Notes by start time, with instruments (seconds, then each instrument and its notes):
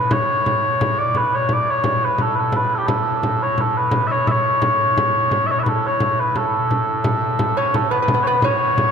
Already playing: pipe organ A2, bagpipes B4
0.11 bagpipes C#5, frame drum
0.46 frame drum
0.81 frame drum
0.98 bagpipes D5, frame drum
1.15 bagpipes B4, frame drum
1.35 bagpipes C#5
1.49 frame drum
1.53 bagpipes D5
1.70 bagpipes C#5
1.84 frame drum
2.04 bagpipes B4
2.18 bagpipes A4, frame drum
2.35 bagpipes A4 B4
2.52 bagpipes B4, frame drum
2.71 bagpipes A4, frame drum
2.78 bagpipes G4
2.87 bagpipes A4, frame drum
3.23 pipe organ A2, frame drum
3.43 bagpipes C#5
3.58 bagpipes A4, frame drum
3.77 bagpipes B4
3.91 frame drum
4.07 bagpipes E5, frame drum
4.12 bagpipes C#5
4.27 bagpipes E5, frame drum
4.31 bagpipes C#5
4.62 frame drum
4.97 frame drum
5.15 frame drum
5.31 frame drum
5.47 bagpipes E5
5.51 bagpipes C#5
5.59 bagpipes B4 E5
5.66 bagpipes A4, frame drum
5.87 bagpipes C#5
6.00 frame drum
6.18 bagpipes B4, frame drum
6.36 bagpipes A4, frame drum
6.71 frame drum
6.87 frame drum
7.04 frame drum
7.39 pipe organ A2, frame drum
7.57 lute C#4, bagpipes C#5
7.74 bagpipes A4, frame drum
7.91 lute B3, bagpipes B4
8.02 lute B3
8.08 frame drum
8.14 lute B3
8.23 lute B3, bagpipes B4 C#5, frame drum
8.42 lute C#4, bagpipes C#5, frame drum
8.78 frame drum